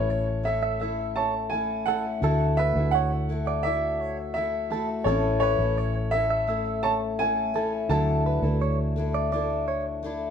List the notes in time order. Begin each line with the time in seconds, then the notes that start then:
Already playing: A1 A3 C#4 E4 A4 B4 C#5 E5
0.10 C#5
0.43 A3 C#4 E4 A4 E5
0.63 E5
0.80 A3 C#4 E4 A4 E5
1.16 C#5 A5
1.50 A3 C#4 E4 G#5
1.55 A4
1.86 A3 C#4 E4 A4 F#5
1.90 A4
2.21 D2 D3 A3 D4 E4 F#4 A4
2.25 E5
2.57 B4 E5
2.76 D2 E4 F#4 A4
2.91 C#5 F#5
3.29 A3 E4 F#4 A4
3.47 D5
3.63 A3 E4 F#4 D5 E5
3.68 A4
4.01 C#5
4.34 A3 E4 F#4 E5
4.38 A4
4.71 A3 E4 F#4 A4
5.04 A1 A2 E3 A3 C4 C#4 E4 A4 C#5
5.08 C#4 A4 E5
5.40 B4 C#5
5.59 A1 A3 C#4 E4 A4
5.78 C#5
6.11 A3 C#4 E4 E5
6.16 A4
6.30 E5
6.47 A3 C#4 E4 A4 E5
6.83 C#5 A5
7.19 A3 C#4 E4 A4 G#5
7.54 A3 C#4 E4 A4
7.88 D2 D3 F#3 A3 D4 E4 F#4 A4 A5
7.92 E5
8.26 B4
8.42 D2 A3 D4 E4 A4
8.62 C#5
8.96 A3 D4 E4 A4
9.14 D5
9.32 A3 D4 E4 A4 D5
9.68 C#5
10.03 A3 D4 E4 A4